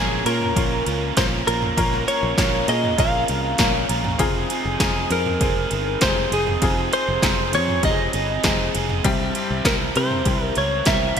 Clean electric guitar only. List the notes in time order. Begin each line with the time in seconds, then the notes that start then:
Already playing: G#4
0.26 A#4
1.17 C5
1.47 A#4
2.08 C#5
2.69 D#5
3.00 F5
4.81 G#4
5.12 A#4
6.02 C5
6.33 G#4
6.93 C5
7.55 C#5
7.85 D#5
9.67 A#4
9.97 C5
10.44 A#4
10.58 C#5
10.87 E5